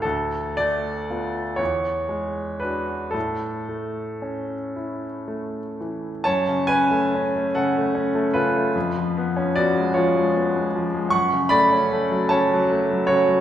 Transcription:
X:1
M:6/8
L:1/16
Q:3/8=48
K:A
V:1 name="Grand piano"
A2 d4 c4 B2 | A8- A2 z2 | [K:F#m] [ca]2 [Bg]4 [Af]4 [^EB]2- | [^EB]4 [Fd]2 [Ec]6 |
[fc']2 [db]4 [ca]4 [Fc]2 |]
V:2 name="Grand piano" clef=bass
D,,2 A,2 [B,=F]2 E,,2 G,2 [D^F]2 | A,,2 A,2 C2 E2 A,2 E,2 | [K:F#m] F,, C, C A, C A, C, A, C A, C, A, | ^E,, ^E, B, C B, G, E, G, B, G, E, G, |
F,, C, A, C A, F, C, F, A, F, C, F, |]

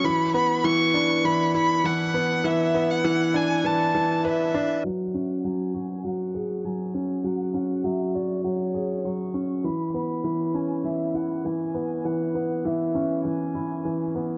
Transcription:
X:1
M:4/4
L:1/16
Q:1/4=100
K:F#m
V:1 name="Violin"
b2 b2 c'4 b2 b2 f4 | e3 f3 g2 a4 e4 | f4 g4 f4 g4 | f2 f2 e2 d2 c4 c'4 |
b2 b4 g2 e2 f2 g4 | f4 e4 g6 z2 |]
V:2 name="Felt piano" clef=bass
E,2 B,2 E,2 D2 E,2 E2 E,2 B,2 | E,2 B,2 E,2 D2 E,2 E,2 B2 D2 | F,2 C2 F,2 F2 F,2 G2 F,2 C2 | F,2 C2 F,2 F2 F,2 G2 F,2 C2 |
E,2 B,2 E,2 C2 E,2 E2 E,2 B,2 | E,2 B,2 E,2 C2 E,2 E2 E,2 B,2 |]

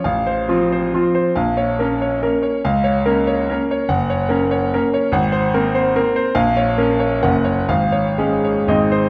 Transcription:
X:1
M:3/4
L:1/8
Q:1/4=140
K:Bbm
V:1 name="Grand piano"
f c F c F c | f d B d B d | f d B d B d | [K:Db] g d B d B d |
g c B c B c | f d B d g d | f d A d e c |]
V:2 name="Grand piano"
=A,,,2 [F,C]2 [F,C]2 | B,,,2 [B,D]2 [B,D]2 | D,,2 [B,D]2 [B,D]2 | [K:Db] G,,,2 [B,D]2 [B,D]2 |
A,,,2 [B,C]2 [B,C]2 | B,,,2 [B,D]2 [G,,,B,D]2 | A,,,2 [A,D]2 [A,,,A,CE]2 |]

